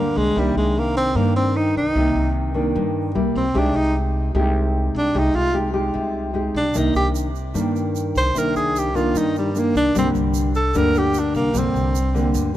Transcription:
Already playing: upright bass D2, nylon-string guitar G2 D3 G3 A#3 D4, tenor saxophone A#3
0.16 upright bass C2, tenor saxophone G#3
0.36 upright bass C2, nylon-string guitar C3 D#3 A#3 D4, tenor saxophone G3
0.55 upright bass C2, tenor saxophone G#3
0.79 tenor saxophone A#3
0.97 tenor saxophone C4
1.15 upright bass G2, nylon-string guitar G2 D#3 A#3 D4, tenor saxophone A#3
1.36 tenor saxophone C4
1.56 tenor saxophone D#4
1.76 upright bass C2, tenor saxophone D#4
1.95 upright bass C2, nylon-string guitar C3 D#3 A#3
2.15 upright bass C2
2.54 nylon-string guitar D#3 A#3 D4
2.76 upright bass G2, nylon-string guitar G2
3.15 upright bass C2, nylon-string guitar G3 A#3 E4
3.35 upright bass C2, tenor saxophone C4
3.54 upright bass C2, nylon-string guitar C3 G#3 D#4 G4
3.59 tenor saxophone D4
3.76 upright bass C2, tenor saxophone D#4
4.35 upright bass C2, nylon-string guitar C3 G#3 D#4 G4
4.95 upright bass C2, tenor saxophone D4
5.14 upright bass C2, nylon-string guitar C3 G#3 D#4 G4, tenor saxophone D#4
5.34 upright bass C2, tenor saxophone F4
5.54 nylon-string guitar G#3 D#4 G4
5.73 nylon-string guitar G#3 D#4 G4
5.94 upright bass C2, nylon-string guitar C3
6.34 nylon-string guitar G#3 D#4 G4
6.55 upright bass C2, tenor saxophone D4
6.74 upright bass C2, nylon-string guitar C3 D#3 A#3 D4, tenor saxophone D#4, shaker
6.95 upright bass C2, tenor saxophone G4, shaker
7.15 shaker
7.35 shaker
7.54 nylon-string guitar G2 D#3 A#3 D4, upright bass G2, shaker
7.76 shaker
7.96 shaker
8.15 upright bass C2, tenor saxophone C5, shaker
8.34 upright bass C2, nylon-string guitar C3 D#3 A#3 D4, shaker
8.38 tenor saxophone A#4
8.56 upright bass C2, tenor saxophone G#4, shaker
8.76 tenor saxophone G4, shaker
8.95 nylon-string guitar D#3 A#3 D4, tenor saxophone F4, shaker
9.15 upright bass G2, nylon-string guitar G2, tenor saxophone D#4, shaker
9.36 tenor saxophone G3, shaker
9.55 nylon-string guitar D#3 A#3 D4, tenor saxophone A#3, shaker
9.75 upright bass C2, tenor saxophone D4, shaker
9.95 upright bass C2, nylon-string guitar G2 D3 G3 A#3 D4, tenor saxophone C4, shaker
10.15 upright bass C2, shaker
10.34 shaker
10.55 tenor saxophone A4, shaker
10.74 upright bass D2, nylon-string guitar G2 D3 G3 A#3 D4, tenor saxophone A#4, shaker
10.95 tenor saxophone G4, shaker
11.14 shaker
11.19 tenor saxophone D4
11.34 upright bass C2, tenor saxophone A#3, shaker
11.53 upright bass C2, nylon-string guitar G2 D3 G3 A#3 D4, shaker
11.59 tenor saxophone C4
11.74 upright bass C2, shaker
11.95 shaker
12.14 nylon-string guitar D3 G3 A#3 D4, shaker
12.34 upright bass D2, nylon-string guitar G2, shaker

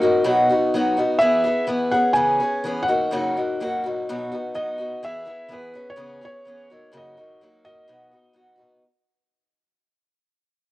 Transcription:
Already playing: felt piano D#5
0.01 steel-string acoustic guitar F#3 A#3 D#4 F#4
0.24 steel-string acoustic guitar B2 F#3 B3 D#4 F#4
0.49 steel-string acoustic guitar B3 D#4 F#4
0.74 steel-string acoustic guitar F#3 B3 D#4 F#4
0.97 steel-string acoustic guitar B3 D#4 F#4
1.19 steel-string acoustic guitar E3 B3 E4 G#4, felt piano E5
1.44 steel-string acoustic guitar B3 E4 G#4
1.67 steel-string acoustic guitar E3 B3 E4 G#4
1.92 steel-string acoustic guitar B3 C#4 G#4, felt piano F#5
2.13 steel-string acoustic guitar C#3 E3 B3 C#4 G#4, felt piano G#5
2.40 steel-string acoustic guitar B3 C#4 G#4
2.64 steel-string acoustic guitar E3 B3 C#4 G#4
2.83 felt piano F#5
2.88 steel-string acoustic guitar F#3 A#3 D#4 F#4
3.11 steel-string acoustic guitar F#2 C#3 F#3 A#3 D#4 F#4
3.37 steel-string acoustic guitar F#3 A#3 D#4 F#4
3.61 steel-string acoustic guitar F#3 A#3 D#4 F#4
3.84 steel-string acoustic guitar F#3 A#3 D#4 F#4
4.09 steel-string acoustic guitar B2 F#3 B3 D#4 F#4
4.32 steel-string acoustic guitar B3 D#4 F#4
4.54 steel-string acoustic guitar F#3 B3 D#4 F#4, felt piano D#5
4.78 steel-string acoustic guitar B3 D#4 F#4
5.02 steel-string acoustic guitar E3 B3 E4 G#4, felt piano E5
5.25 steel-string acoustic guitar B3 E4 G#4
5.48 steel-string acoustic guitar E3 B3 E4 G#4
5.53 felt piano B4
5.74 steel-string acoustic guitar B3 C#4 G#4
5.90 felt piano C#5
5.96 steel-string acoustic guitar C#3 E3 B3 C#4 G#4
6.21 steel-string acoustic guitar B3 C#4 G#4, felt piano C#5
6.45 steel-string acoustic guitar E3 B3 C#4 G#4
6.70 steel-string acoustic guitar F#3 A#3 D#4 F#4
6.92 steel-string acoustic guitar F#2 C#3 F#3 A#3 D#4 F#4
6.97 felt piano D#5
7.17 steel-string acoustic guitar F#3 A#3 D#4 F#4
7.41 steel-string acoustic guitar F#3 A#3 D#4 F#4
7.65 steel-string acoustic guitar F#3 A#3 D#4 F#4, felt piano D#5
7.88 steel-string acoustic guitar B2 F#3 B3 D#4 F#4
8.11 steel-string acoustic guitar B3 D#4 F#4
8.33 steel-string acoustic guitar F#3 B3 D#4 F#4
8.56 steel-string acoustic guitar B3 D#4 F#4

